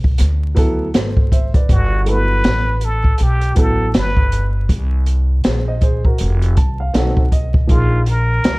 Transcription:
0.00 0.16 B1 loud
0.04 kick medium
0.18 0.91 D2 loud
0.18 snare soft
0.18 closed hi-hat medium
0.55 0.84 F#3 medium
0.55 0.85 B3 medium
0.55 0.85 E4 medium
0.55 0.86 A4 loud
0.55 kick medium
0.55 closed hi-hat medium
0.94 1.66 G#1 medium
0.94 1.30 A4 soft
0.94 1.30 C5 medium
0.94 snare loud
0.94 closed hi-hat medium
1.17 kick medium
1.31 1.53 C5 medium
1.31 1.53 E5 medium
1.31 kick medium
1.31 closed hi-hat medium
1.54 1.90 B4 medium
1.54 1.90 D5 medium
1.54 kick medium
1.54 closed hi-hat soft
1.69 2.41 G1 loud
1.69 2.11 F#4 medium
1.69 kick medium
1.69 closed hi-hat medium
2.05 2.61 F#3 medium
2.05 2.14 A3 soft
2.05 2.62 E4 soft
2.05 2.63 A4 medium
2.05 closed hi-hat medium
2.09 2.65 B3 medium
2.09 2.86 B4 loud
2.44 3.16 A1 loud
2.44 snare loud
2.44 closed hi-hat medium
2.81 3.24 A4 medium
2.81 closed hi-hat medium
3.04 kick medium
3.18 3.55 B1 loud
3.18 closed hi-hat medium
3.23 3.62 G4 medium
3.41 closed hi-hat soft
3.55 3.93 A1 medium
3.55 3.84 F#3 medium
3.55 3.85 B3 medium
3.55 3.86 E4 medium
3.55 3.86 A4 medium
3.55 kick medium
3.55 closed hi-hat medium
3.60 3.96 A4 medium
3.94 4.66 G1 medium
3.94 4.52 B4 medium
3.94 snare loud
3.94 closed hi-hat medium
4.17 kick medium
4.32 closed hi-hat medium
4.69 5.41 C2 loud
4.69 kick medium
4.69 closed hi-hat medium
5.06 closed hi-hat medium
5.44 6.16 A#1 medium
5.44 5.66 G#4 medium
5.44 5.66 C5 medium
5.44 snare loud
5.44 closed hi-hat medium
5.68 5.81 C5 medium
5.68 5.81 D#5 medium
5.81 6.04 G#4 medium
5.81 6.04 C5 medium
5.81 kick medium
5.81 closed hi-hat medium
6.05 6.41 F#4 medium
6.05 6.40 A#4 medium
6.05 kick medium
6.18 6.55 F1 loud
6.18 closed hi-hat medium
6.42 closed hi-hat soft
6.57 6.93 C2 medium
6.57 6.78 A5 medium
6.57 kick medium
6.57 closed hi-hat medium
6.80 6.93 F5 medium
6.94 7.66 B1 medium
6.94 7.22 C4 medium
6.94 7.23 D#4 medium
6.94 7.24 F#4 medium
6.94 7.24 A4 medium
6.94 7.30 F#5 medium
6.94 snare loud
6.94 closed hi-hat medium
7.17 kick medium
7.32 7.67 D#5 medium
7.32 kick medium
7.32 closed hi-hat medium
7.54 kick loud
7.67 8.41 A#1 loud
7.67 7.97 F3 medium
7.67 7.98 A#3 medium
7.67 7.98 D#4 medium
7.67 8.11 F4 medium
7.67 7.99 G#4 medium
7.67 kick medium
7.67 closed hi-hat medium
8.06 8.59 A#4 medium
8.06 closed hi-hat medium
8.44 8.59 C#2 loud
8.44 snare loud
8.44 closed hi-hat medium

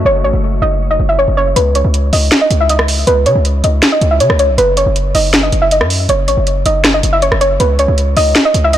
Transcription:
0.00 1.53 A3 medium
0.00 1.53 F#4 medium
0.00 1.52 C#5 medium
0.05 0.26 F#1 loud
0.05 0.22 C#5 medium
0.24 0.33 A1 loud
0.24 0.60 C#5 medium
0.33 0.61 F#1 loud
0.62 0.98 F#1 loud
0.62 0.88 D#5 medium
0.91 1.07 D#5 medium
1.00 1.27 F#1 loud
1.09 1.17 E5 medium
1.19 1.35 C#5 medium
1.28 1.55 F#1 loud
1.37 1.54 C#5 medium
1.56 1.83 C#2 loud
1.56 1.73 B4 medium
1.56 closed hi-hat medium
1.75 2.11 C#5 medium
1.75 closed hi-hat medium
1.84 2.12 C#2 loud
1.94 closed hi-hat medium
2.13 2.31 C#2 loud
2.13 2.40 D#5 medium
2.13 open hi-hat medium
2.32 snare loud
2.32 closed hi-hat medium
2.41 2.58 D#5 medium
2.51 3.05 C#2 loud
2.51 closed hi-hat medium
2.60 2.69 E5 medium
2.69 3.05 D#5 medium
2.69 closed hi-hat medium
2.79 cross-stick medium
2.88 open hi-hat medium
3.07 3.28 C#2 loud
3.07 3.24 B4 medium
3.07 closed hi-hat medium
3.26 3.35 C#3 loud
3.26 3.62 C#5 medium
3.26 closed hi-hat medium
3.35 3.63 C#2 loud
3.45 closed hi-hat medium
3.64 3.82 C#2 loud
3.64 3.90 D#5 medium
3.64 closed hi-hat medium
3.83 snare loud
3.83 closed hi-hat medium
3.92 4.09 D#5 medium
4.01 4.22 C#2 loud
4.01 closed hi-hat medium
4.11 4.19 E5 medium
4.20 4.29 C#3 loud
4.20 4.37 C#5 medium
4.20 closed hi-hat medium
4.30 4.50 C#2 loud
4.30 cross-stick medium
4.39 4.56 C#5 medium
4.39 closed hi-hat medium
4.49 4.58 B1 loud
4.58 4.85 F#1 loud
4.58 4.75 B4 medium
4.58 closed hi-hat medium
4.77 5.13 C#5 medium
4.77 closed hi-hat medium
4.86 5.13 F#1 loud
4.96 closed hi-hat medium
5.15 5.51 F#1 loud
5.15 5.41 D#5 medium
5.15 open hi-hat medium
5.34 snare loud
5.34 closed hi-hat medium
5.43 5.60 D#5 medium
5.52 5.82 F#1 loud
5.52 closed hi-hat medium
5.62 5.70 E5 medium
5.71 6.07 D#5 medium
5.71 closed hi-hat medium
5.81 6.08 F#2 loud
5.81 cross-stick medium
5.90 open hi-hat medium
6.09 6.29 F#1 loud
6.09 6.26 C#5 medium
6.09 closed hi-hat medium
6.28 6.37 A1 medium
6.28 6.63 C#5 medium
6.28 closed hi-hat medium
6.37 6.65 F#1 loud
6.47 closed hi-hat medium
6.66 7.02 F#1 loud
6.66 6.92 D#5 medium
6.66 closed hi-hat medium
6.84 cross-stick medium
6.84 snare loud
6.84 closed hi-hat medium
6.94 7.11 D#5 medium
7.03 7.31 F#1 loud
7.03 closed hi-hat medium
7.13 7.21 E5 medium
7.22 7.39 C#5 medium
7.22 closed hi-hat medium
7.32 7.59 F#1 loud
7.32 cross-stick medium
7.41 7.58 C#5 medium
7.41 closed hi-hat medium
7.60 7.87 C#2 loud
7.60 7.77 B4 medium
7.60 closed hi-hat medium
7.79 8.15 C#5 medium
7.79 closed hi-hat medium
7.88 8.15 C#2 loud
7.98 closed hi-hat medium
8.17 8.35 C#2 loud
8.17 8.43 D#5 medium
8.17 open hi-hat medium
8.35 snare loud
8.35 closed hi-hat medium
8.45 8.62 D#5 medium
8.54 8.78 C#2 loud
8.54 closed hi-hat medium
8.64 8.72 E5 medium
8.73 8.78 D#5 medium
8.73 closed hi-hat medium

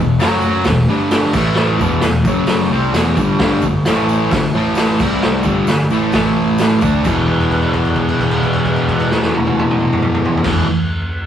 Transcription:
0.00 0.20 E1 medium
0.00 0.19 E2 medium
0.00 0.20 B2 medium
0.19 0.64 F#1 loud
0.19 0.64 F#2 medium
0.19 0.64 C#3 loud
0.19 0.66 F#3 loud
0.19 snare loud
0.19 open hi-hat medium
0.19 tambourine medium
0.42 tambourine medium
0.64 0.88 E1 medium
0.64 0.84 E2 medium
0.64 0.84 B2 medium
0.64 kick loud
0.64 snare loud
0.64 open hi-hat medium
0.64 tambourine medium
0.88 1.32 G1 loud
0.88 1.34 G2 loud
0.88 1.34 D3 medium
0.88 1.35 G3 loud
1.11 snare loud
1.11 open hi-hat medium
1.11 tambourine loud
1.33 1.77 A1 medium
1.33 1.80 A2 medium
1.33 1.80 E3 loud
1.33 1.81 A3 loud
1.33 kick loud
1.33 tambourine medium
1.33 crash loud
1.55 snare loud
1.79 2.01 E1 loud
1.79 2.02 E2 loud
1.79 2.03 B2 loud
1.79 2.03 E3 loud
1.79 kick medium
1.79 tambourine medium
2.01 2.24 E1 medium
2.01 2.22 E2 medium
2.01 2.22 B2 medium
2.01 snare loud
2.01 open hi-hat medium
2.01 tambourine medium
2.25 2.68 F#1 loud
2.25 2.71 F#2 medium
2.25 2.71 C#3 medium
2.25 2.71 F#3 loud
2.25 kick loud
2.25 tambourine medium
2.47 snare loud
2.47 open hi-hat medium
2.47 tambourine medium
2.70 2.92 C2 loud
2.70 2.94 C3 medium
2.70 2.94 G3 medium
2.70 2.94 C4 loud
2.93 3.15 E1 medium
2.93 3.16 E2 loud
2.93 3.17 B2 medium
2.93 3.17 E3 loud
2.93 snare loud
2.93 open hi-hat medium
2.93 tambourine loud
3.17 3.38 G1 loud
3.17 3.39 G2 medium
3.17 3.40 D3 medium
3.17 3.41 G3 loud
3.17 kick medium
3.17 tambourine medium
3.39 3.61 G1 loud
3.39 3.62 G2 medium
3.39 3.63 D3 loud
3.39 3.64 G3 loud
3.39 kick loud
3.39 snare loud
3.39 open hi-hat medium
3.62 3.84 G1 loud
3.62 3.82 G2 medium
3.62 kick medium
3.62 tambourine medium
3.66 3.83 D3 medium
3.85 4.28 A1 loud
3.85 4.31 A2 loud
3.85 4.32 E3 loud
3.85 4.32 A3 loud
3.85 snare loud
3.85 open hi-hat medium
3.85 tambourine medium
4.09 tambourine medium
4.31 4.52 G1 medium
4.31 4.49 G2 medium
4.31 4.50 D3 medium
4.31 kick loud
4.31 snare loud
4.31 open hi-hat medium
4.31 tambourine medium
4.54 4.97 A1 loud
4.54 4.99 A2 medium
4.54 4.99 E3 loud
4.54 4.99 A3 loud
4.75 snare loud
4.75 open hi-hat medium
4.75 tambourine loud
4.99 5.42 C2 loud
4.99 5.44 C3 loud
4.99 5.44 G3 medium
4.99 5.46 C4 medium
4.99 kick loud
4.99 tambourine medium
4.99 crash loud
5.22 snare loud
5.22 tambourine soft
5.43 5.66 G1 loud
5.43 5.66 G2 loud
5.43 5.67 D3 loud
5.43 5.67 G3 loud
5.43 kick medium
5.43 tambourine medium
5.67 5.89 G1 medium
5.67 5.87 G2 medium
5.67 5.87 D3 medium
5.67 snare loud
5.67 open hi-hat medium
5.67 tambourine medium
5.90 6.11 A1 loud
5.90 6.12 A2 medium
5.90 6.13 E3 medium
5.90 6.13 A3 loud
5.90 tambourine medium
6.12 6.78 A1 loud
6.12 6.81 A2 loud
6.12 6.82 E3 loud
6.12 6.82 A3 loud
6.12 kick loud
6.12 snare loud
6.12 open hi-hat medium
6.12 tambourine medium
6.58 snare loud
6.58 open hi-hat medium
6.58 tambourine loud
6.81 7.03 D2 medium
6.81 7.05 D3 medium
6.81 7.05 A3 medium
6.81 7.05 D4 loud
6.81 kick loud
6.81 tambourine medium
7.03 10.34 E1 loud
7.03 10.43 E2 loud
7.03 10.45 B2 loud
7.03 kick loud
7.03 crash medium
7.03 tambourine medium
7.08 10.47 E3 loud
7.28 kick medium
7.28 crash soft
7.40 crash soft
7.51 kick medium
7.51 crash soft
7.62 crash soft
7.73 kick medium
7.73 crash soft
7.85 crash soft
7.95 kick medium
7.95 crash soft
8.08 crash medium
8.20 kick medium
8.20 crash medium
8.31 crash medium
8.43 kick medium
8.43 crash medium
8.53 crash medium
8.65 kick medium
8.65 crash medium
8.76 crash medium
8.88 kick medium
8.88 crash medium
9.00 crash soft
9.11 snare loud
9.22 snare medium
9.34 high tom loud
9.47 high tom medium
9.59 high tom loud
9.71 mid tom loud
9.81 mid tom medium
9.93 mid tom loud
10.02 mid tom loud
10.15 mid tom loud
10.25 floor tom loud
10.37 floor tom loud
10.43 10.63 E1 medium
10.43 10.64 E2 loud
10.43 10.65 B2 medium
10.43 10.66 E3 medium
10.43 kick loud
10.43 snare loud
10.43 crash loud

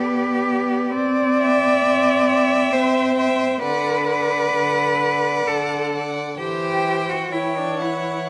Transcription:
0.00 0.90 B3 medium
0.00 0.93 G4 medium
0.00 0.94 B4 medium
0.00 0.90 D5 medium
0.93 1.73 C4 medium
0.93 2.74 D5 loud
1.39 2.27 E5 medium
1.39 2.27 G5 medium
1.84 2.63 C4 medium
2.29 3.16 E5 medium
2.29 3.15 G5 medium
2.73 3.51 C4 medium
2.73 3.61 C5 medium
3.17 3.61 E5 medium
3.17 3.60 G5 medium
3.61 4.43 D3 medium
3.61 5.49 B4 medium
3.61 4.06 D5 soft
3.61 4.06 F#5 medium
4.06 4.99 D5 medium
4.06 4.99 F#5 medium
4.54 5.36 D3 medium
5.01 5.91 D5 medium
5.01 5.90 F#5 medium
5.47 6.28 D3 medium
5.47 5.92 A4 medium
5.92 6.39 D5 medium
5.92 6.37 F#5 medium
6.38 7.29 E3 medium
6.38 7.12 G4 medium
6.38 7.29 C5 medium
6.38 7.28 G5 medium
7.10 7.34 F#4 medium
7.31 8.29 E3 medium
7.31 7.59 E4 medium
7.31 8.29 C#5 medium
7.31 7.79 G5 soft
7.58 7.83 D4 medium
7.79 8.29 E4 medium
7.79 8.29 F#5 soft

